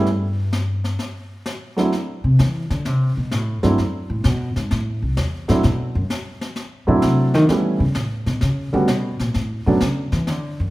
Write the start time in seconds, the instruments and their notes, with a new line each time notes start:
Already playing: upright bass G2
0.06 brush sweep, snare
0.53 snare
0.84 snare
0.99 brush sweep, snare
1.46 snare
1.76 grand piano F#3 A3 C4 D4 E4, snare
1.92 brush sweep, snare
2.24 upright bass C3
2.39 upright bass E3, snare
2.70 upright bass D3, snare
2.85 upright bass C3, brush sweep, snare
3.17 upright bass B2
3.31 upright bass A2, snare
3.63 upright bass G2, grand piano F#3 A3 C4 D4 E4, snare
3.78 upright bass F#2, brush sweep, snare
4.10 upright bass A2
4.24 upright bass B2, snare
4.56 upright bass G#2, snare
4.71 upright bass A2, brush sweep, snare
5.02 upright bass C2
5.17 upright bass E2, snare
5.48 upright bass A2, grand piano F#3 A3 C4 D4 E4, snare
5.63 upright bass B2, brush sweep, snare
5.95 upright bass F#2
6.10 snare
6.41 snare
6.56 brush sweep, snare
6.87 upright bass B2, grand piano F#3 A3 C4 D4 E4
7.02 upright bass C3, snare
7.34 upright bass D#3, snare
7.49 upright bass E3, grand piano G3 A3 B3 C#4 E4, brush sweep, snare
7.80 upright bass C#3
7.95 upright bass A2, snare
8.26 upright bass B2, snare
8.41 upright bass C#3, brush sweep, snare
8.73 upright bass D3, grand piano G3 A3 B3 C#4 F#4
8.88 upright bass B2, snare
9.20 upright bass A#2, snare
9.34 upright bass A2, brush sweep, snare
9.66 upright bass B2, grand piano F#3 A3 B3 C#4 D4
9.80 upright bass C#3, snare
10.12 upright bass E3, snare
10.27 upright bass D3, brush sweep, snare
10.60 upright bass F#2